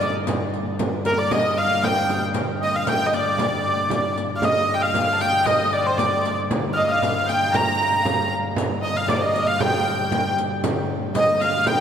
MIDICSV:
0, 0, Header, 1, 7, 480
1, 0, Start_track
1, 0, Key_signature, -2, "minor"
1, 0, Tempo, 518135
1, 255, Time_signature, 2, 2, 24, 8
1, 10935, End_track
2, 0, Start_track
2, 0, Title_t, "Fiddle"
2, 0, Program_c, 0, 110
2, 0, Note_on_c, 0, 74, 72
2, 141, Note_off_c, 0, 74, 0
2, 986, Note_on_c, 0, 70, 67
2, 1094, Note_off_c, 0, 70, 0
2, 1106, Note_on_c, 0, 74, 73
2, 1214, Note_off_c, 0, 74, 0
2, 1236, Note_on_c, 0, 75, 78
2, 1451, Note_off_c, 0, 75, 0
2, 1471, Note_on_c, 0, 77, 78
2, 1689, Note_off_c, 0, 77, 0
2, 1697, Note_on_c, 0, 79, 80
2, 2033, Note_off_c, 0, 79, 0
2, 2433, Note_on_c, 0, 75, 68
2, 2539, Note_off_c, 0, 75, 0
2, 2544, Note_on_c, 0, 77, 74
2, 2662, Note_on_c, 0, 79, 82
2, 2676, Note_off_c, 0, 77, 0
2, 2902, Note_off_c, 0, 79, 0
2, 2915, Note_on_c, 0, 74, 75
2, 3833, Note_off_c, 0, 74, 0
2, 4112, Note_on_c, 0, 75, 77
2, 4443, Note_off_c, 0, 75, 0
2, 4462, Note_on_c, 0, 77, 80
2, 4755, Note_on_c, 0, 81, 61
2, 4769, Note_off_c, 0, 77, 0
2, 4817, Note_on_c, 0, 79, 94
2, 4831, Note_off_c, 0, 81, 0
2, 5045, Note_off_c, 0, 79, 0
2, 5051, Note_on_c, 0, 75, 75
2, 5312, Note_on_c, 0, 74, 74
2, 5326, Note_off_c, 0, 75, 0
2, 5536, Note_off_c, 0, 74, 0
2, 5541, Note_on_c, 0, 74, 60
2, 5877, Note_off_c, 0, 74, 0
2, 6254, Note_on_c, 0, 75, 64
2, 6370, Note_off_c, 0, 75, 0
2, 6378, Note_on_c, 0, 77, 72
2, 6742, Note_on_c, 0, 79, 81
2, 6756, Note_off_c, 0, 77, 0
2, 6955, Note_off_c, 0, 79, 0
2, 6961, Note_on_c, 0, 82, 88
2, 7435, Note_on_c, 0, 77, 70
2, 7449, Note_off_c, 0, 82, 0
2, 7689, Note_off_c, 0, 77, 0
2, 8168, Note_on_c, 0, 75, 73
2, 8308, Note_on_c, 0, 77, 64
2, 8322, Note_off_c, 0, 75, 0
2, 8411, Note_on_c, 0, 74, 64
2, 8425, Note_off_c, 0, 77, 0
2, 8473, Note_on_c, 0, 72, 57
2, 8487, Note_off_c, 0, 74, 0
2, 8543, Note_on_c, 0, 74, 65
2, 8557, Note_off_c, 0, 72, 0
2, 8775, Note_off_c, 0, 74, 0
2, 8781, Note_on_c, 0, 77, 77
2, 8903, Note_on_c, 0, 79, 81
2, 8917, Note_off_c, 0, 77, 0
2, 9620, Note_off_c, 0, 79, 0
2, 10328, Note_on_c, 0, 75, 76
2, 10560, Note_on_c, 0, 77, 88
2, 10574, Note_off_c, 0, 75, 0
2, 10792, Note_off_c, 0, 77, 0
2, 10798, Note_on_c, 0, 79, 89
2, 10935, Note_off_c, 0, 79, 0
2, 10935, End_track
3, 0, Start_track
3, 0, Title_t, "Hurdy-gurdy"
3, 0, Program_c, 1, 110
3, 0, Note_on_c, 1, 74, 84
3, 105, Note_off_c, 1, 74, 0
3, 981, Note_on_c, 1, 70, 75
3, 1094, Note_off_c, 1, 70, 0
3, 1094, Note_on_c, 1, 74, 84
3, 1215, Note_on_c, 1, 75, 85
3, 1216, Note_off_c, 1, 74, 0
3, 1459, Note_off_c, 1, 75, 0
3, 1459, Note_on_c, 1, 77, 96
3, 1708, Note_off_c, 1, 77, 0
3, 1708, Note_on_c, 1, 79, 107
3, 2064, Note_off_c, 1, 79, 0
3, 2442, Note_on_c, 1, 75, 86
3, 2555, Note_off_c, 1, 75, 0
3, 2555, Note_on_c, 1, 77, 85
3, 2676, Note_off_c, 1, 77, 0
3, 2676, Note_on_c, 1, 79, 100
3, 2835, Note_on_c, 1, 75, 58
3, 2845, Note_off_c, 1, 79, 0
3, 2905, Note_off_c, 1, 75, 0
3, 2905, Note_on_c, 1, 74, 86
3, 3865, Note_off_c, 1, 74, 0
3, 4039, Note_on_c, 1, 77, 69
3, 4116, Note_off_c, 1, 77, 0
3, 4116, Note_on_c, 1, 75, 87
3, 4390, Note_on_c, 1, 79, 68
3, 4406, Note_off_c, 1, 75, 0
3, 4462, Note_off_c, 1, 79, 0
3, 4462, Note_on_c, 1, 77, 96
3, 4826, Note_off_c, 1, 77, 0
3, 4826, Note_on_c, 1, 79, 99
3, 5057, Note_off_c, 1, 79, 0
3, 5057, Note_on_c, 1, 75, 91
3, 5304, Note_off_c, 1, 75, 0
3, 5304, Note_on_c, 1, 74, 82
3, 5429, Note_off_c, 1, 74, 0
3, 5429, Note_on_c, 1, 72, 77
3, 5539, Note_off_c, 1, 72, 0
3, 5539, Note_on_c, 1, 74, 78
3, 5902, Note_off_c, 1, 74, 0
3, 6236, Note_on_c, 1, 77, 57
3, 6265, Note_off_c, 1, 77, 0
3, 6267, Note_on_c, 1, 75, 71
3, 6385, Note_off_c, 1, 75, 0
3, 6392, Note_on_c, 1, 77, 79
3, 6752, Note_off_c, 1, 77, 0
3, 6752, Note_on_c, 1, 79, 86
3, 7003, Note_off_c, 1, 79, 0
3, 7003, Note_on_c, 1, 82, 102
3, 7713, Note_off_c, 1, 82, 0
3, 8186, Note_on_c, 1, 75, 79
3, 8304, Note_off_c, 1, 75, 0
3, 8304, Note_on_c, 1, 77, 79
3, 8418, Note_off_c, 1, 77, 0
3, 8418, Note_on_c, 1, 74, 86
3, 8533, Note_on_c, 1, 75, 82
3, 8540, Note_off_c, 1, 74, 0
3, 8774, Note_off_c, 1, 75, 0
3, 8774, Note_on_c, 1, 77, 90
3, 8892, Note_on_c, 1, 79, 93
3, 8898, Note_off_c, 1, 77, 0
3, 9578, Note_off_c, 1, 79, 0
3, 10336, Note_on_c, 1, 75, 91
3, 10572, Note_off_c, 1, 75, 0
3, 10572, Note_on_c, 1, 77, 89
3, 10819, Note_off_c, 1, 77, 0
3, 10819, Note_on_c, 1, 79, 99
3, 10935, Note_off_c, 1, 79, 0
3, 10935, End_track
4, 0, Start_track
4, 0, Title_t, "Oboe"
4, 0, Program_c, 2, 68
4, 0, Note_on_c, 2, 74, 76
4, 141, Note_off_c, 2, 74, 0
4, 983, Note_on_c, 2, 70, 62
4, 1204, Note_off_c, 2, 70, 0
4, 1227, Note_on_c, 2, 75, 87
4, 1702, Note_on_c, 2, 79, 89
4, 1716, Note_off_c, 2, 75, 0
4, 2062, Note_off_c, 2, 79, 0
4, 2419, Note_on_c, 2, 75, 78
4, 2548, Note_on_c, 2, 77, 81
4, 2562, Note_off_c, 2, 75, 0
4, 2670, Note_on_c, 2, 79, 89
4, 2684, Note_off_c, 2, 77, 0
4, 2909, Note_on_c, 2, 74, 76
4, 2922, Note_off_c, 2, 79, 0
4, 3867, Note_off_c, 2, 74, 0
4, 4108, Note_on_c, 2, 75, 79
4, 4459, Note_on_c, 2, 77, 86
4, 4473, Note_off_c, 2, 75, 0
4, 4816, Note_off_c, 2, 77, 0
4, 4821, Note_on_c, 2, 79, 87
4, 5054, Note_on_c, 2, 75, 85
4, 5068, Note_off_c, 2, 79, 0
4, 5298, Note_on_c, 2, 74, 76
4, 5312, Note_off_c, 2, 75, 0
4, 5409, Note_on_c, 2, 72, 72
4, 5423, Note_off_c, 2, 74, 0
4, 5538, Note_on_c, 2, 74, 69
4, 5552, Note_off_c, 2, 72, 0
4, 5901, Note_off_c, 2, 74, 0
4, 6253, Note_on_c, 2, 75, 69
4, 6374, Note_on_c, 2, 77, 75
4, 6388, Note_off_c, 2, 75, 0
4, 6730, Note_on_c, 2, 79, 78
4, 6744, Note_off_c, 2, 77, 0
4, 6968, Note_on_c, 2, 82, 93
4, 6982, Note_off_c, 2, 79, 0
4, 7695, Note_off_c, 2, 82, 0
4, 8179, Note_on_c, 2, 75, 73
4, 8302, Note_on_c, 2, 77, 73
4, 8316, Note_off_c, 2, 75, 0
4, 8432, Note_on_c, 2, 74, 69
4, 8446, Note_off_c, 2, 77, 0
4, 8777, Note_on_c, 2, 77, 77
4, 8790, Note_off_c, 2, 74, 0
4, 8890, Note_on_c, 2, 79, 88
4, 8904, Note_off_c, 2, 77, 0
4, 9614, Note_off_c, 2, 79, 0
4, 10330, Note_on_c, 2, 75, 78
4, 10571, Note_on_c, 2, 77, 87
4, 10585, Note_off_c, 2, 75, 0
4, 10807, Note_on_c, 2, 79, 93
4, 10821, Note_off_c, 2, 77, 0
4, 10935, Note_off_c, 2, 79, 0
4, 10935, End_track
5, 0, Start_track
5, 0, Title_t, "Pipe organ"
5, 0, Program_c, 3, 19
5, 0, Note_on_c, 3, 43, 69
5, 0, Note_on_c, 3, 50, 69
5, 2156, Note_off_c, 3, 43, 0
5, 2157, Note_off_c, 3, 50, 0
5, 2174, Note_on_c, 3, 43, 61
5, 2175, Note_on_c, 3, 50, 65
5, 6012, Note_off_c, 3, 50, 0
5, 6015, Note_off_c, 3, 43, 0
5, 6030, Note_on_c, 3, 50, 66
5, 6033, Note_on_c, 3, 43, 59
5, 9840, Note_off_c, 3, 50, 0
5, 9844, Note_off_c, 3, 43, 0
5, 9859, Note_on_c, 3, 50, 65
5, 9863, Note_on_c, 3, 43, 71
5, 10935, Note_off_c, 3, 43, 0
5, 10935, Note_off_c, 3, 50, 0
5, 10935, End_track
6, 0, Start_track
6, 0, Title_t, "Frame drum"
6, 26, Note_on_c, 9, 64, 70
6, 119, Note_off_c, 9, 64, 0
6, 264, Note_on_c, 9, 64, 92
6, 356, Note_off_c, 9, 64, 0
6, 740, Note_on_c, 9, 64, 84
6, 833, Note_off_c, 9, 64, 0
6, 983, Note_on_c, 9, 64, 68
6, 1076, Note_off_c, 9, 64, 0
6, 1215, Note_on_c, 9, 64, 93
6, 1308, Note_off_c, 9, 64, 0
6, 1457, Note_on_c, 9, 64, 27
6, 1549, Note_off_c, 9, 64, 0
6, 1705, Note_on_c, 9, 64, 83
6, 1798, Note_off_c, 9, 64, 0
6, 1944, Note_on_c, 9, 64, 63
6, 2036, Note_off_c, 9, 64, 0
6, 2174, Note_on_c, 9, 64, 86
6, 2267, Note_off_c, 9, 64, 0
6, 2659, Note_on_c, 9, 64, 86
6, 2752, Note_off_c, 9, 64, 0
6, 3132, Note_on_c, 9, 64, 87
6, 3224, Note_off_c, 9, 64, 0
6, 3614, Note_on_c, 9, 64, 84
6, 3707, Note_off_c, 9, 64, 0
6, 4095, Note_on_c, 9, 64, 93
6, 4187, Note_off_c, 9, 64, 0
6, 4577, Note_on_c, 9, 64, 80
6, 4669, Note_off_c, 9, 64, 0
6, 5060, Note_on_c, 9, 64, 81
6, 5152, Note_off_c, 9, 64, 0
6, 5540, Note_on_c, 9, 64, 76
6, 5632, Note_off_c, 9, 64, 0
6, 5786, Note_on_c, 9, 64, 28
6, 5878, Note_off_c, 9, 64, 0
6, 6028, Note_on_c, 9, 64, 97
6, 6121, Note_off_c, 9, 64, 0
6, 6506, Note_on_c, 9, 64, 75
6, 6599, Note_off_c, 9, 64, 0
6, 6988, Note_on_c, 9, 64, 85
6, 7081, Note_off_c, 9, 64, 0
6, 7460, Note_on_c, 9, 64, 86
6, 7553, Note_off_c, 9, 64, 0
6, 7934, Note_on_c, 9, 64, 102
6, 8026, Note_off_c, 9, 64, 0
6, 8416, Note_on_c, 9, 64, 96
6, 8508, Note_off_c, 9, 64, 0
6, 8898, Note_on_c, 9, 64, 99
6, 8991, Note_off_c, 9, 64, 0
6, 9370, Note_on_c, 9, 64, 81
6, 9463, Note_off_c, 9, 64, 0
6, 9855, Note_on_c, 9, 64, 99
6, 9948, Note_off_c, 9, 64, 0
6, 10333, Note_on_c, 9, 64, 94
6, 10425, Note_off_c, 9, 64, 0
6, 10804, Note_on_c, 9, 64, 91
6, 10897, Note_off_c, 9, 64, 0
6, 10935, End_track
7, 0, Start_track
7, 0, Title_t, "Riq"
7, 11, Note_on_c, 9, 54, 55
7, 103, Note_off_c, 9, 54, 0
7, 250, Note_on_c, 9, 54, 62
7, 343, Note_off_c, 9, 54, 0
7, 497, Note_on_c, 9, 54, 20
7, 589, Note_off_c, 9, 54, 0
7, 734, Note_on_c, 9, 54, 66
7, 827, Note_off_c, 9, 54, 0
7, 972, Note_on_c, 9, 54, 52
7, 1065, Note_off_c, 9, 54, 0
7, 1218, Note_on_c, 9, 54, 63
7, 1311, Note_off_c, 9, 54, 0
7, 1461, Note_on_c, 9, 54, 19
7, 1554, Note_off_c, 9, 54, 0
7, 1697, Note_on_c, 9, 54, 63
7, 1790, Note_off_c, 9, 54, 0
7, 1938, Note_on_c, 9, 54, 44
7, 2031, Note_off_c, 9, 54, 0
7, 2170, Note_on_c, 9, 54, 64
7, 2262, Note_off_c, 9, 54, 0
7, 2658, Note_on_c, 9, 54, 64
7, 2751, Note_off_c, 9, 54, 0
7, 2902, Note_on_c, 9, 54, 54
7, 2995, Note_off_c, 9, 54, 0
7, 3143, Note_on_c, 9, 54, 66
7, 3235, Note_off_c, 9, 54, 0
7, 3624, Note_on_c, 9, 54, 62
7, 3717, Note_off_c, 9, 54, 0
7, 3868, Note_on_c, 9, 54, 50
7, 3961, Note_off_c, 9, 54, 0
7, 4104, Note_on_c, 9, 54, 58
7, 4196, Note_off_c, 9, 54, 0
7, 4586, Note_on_c, 9, 54, 65
7, 4678, Note_off_c, 9, 54, 0
7, 4829, Note_on_c, 9, 54, 56
7, 4922, Note_off_c, 9, 54, 0
7, 5067, Note_on_c, 9, 54, 67
7, 5160, Note_off_c, 9, 54, 0
7, 5550, Note_on_c, 9, 54, 63
7, 5642, Note_off_c, 9, 54, 0
7, 5794, Note_on_c, 9, 54, 52
7, 5886, Note_off_c, 9, 54, 0
7, 6030, Note_on_c, 9, 54, 59
7, 6122, Note_off_c, 9, 54, 0
7, 6514, Note_on_c, 9, 54, 59
7, 6607, Note_off_c, 9, 54, 0
7, 6755, Note_on_c, 9, 54, 52
7, 6848, Note_off_c, 9, 54, 0
7, 6985, Note_on_c, 9, 54, 66
7, 7078, Note_off_c, 9, 54, 0
7, 7467, Note_on_c, 9, 54, 58
7, 7559, Note_off_c, 9, 54, 0
7, 7949, Note_on_c, 9, 54, 65
7, 8041, Note_off_c, 9, 54, 0
7, 8425, Note_on_c, 9, 54, 62
7, 8518, Note_off_c, 9, 54, 0
7, 8667, Note_on_c, 9, 54, 51
7, 8760, Note_off_c, 9, 54, 0
7, 8900, Note_on_c, 9, 54, 60
7, 8992, Note_off_c, 9, 54, 0
7, 9375, Note_on_c, 9, 54, 62
7, 9468, Note_off_c, 9, 54, 0
7, 9619, Note_on_c, 9, 54, 54
7, 9711, Note_off_c, 9, 54, 0
7, 9854, Note_on_c, 9, 54, 75
7, 9947, Note_off_c, 9, 54, 0
7, 10329, Note_on_c, 9, 54, 68
7, 10422, Note_off_c, 9, 54, 0
7, 10575, Note_on_c, 9, 54, 54
7, 10667, Note_off_c, 9, 54, 0
7, 10810, Note_on_c, 9, 54, 59
7, 10902, Note_off_c, 9, 54, 0
7, 10935, End_track
0, 0, End_of_file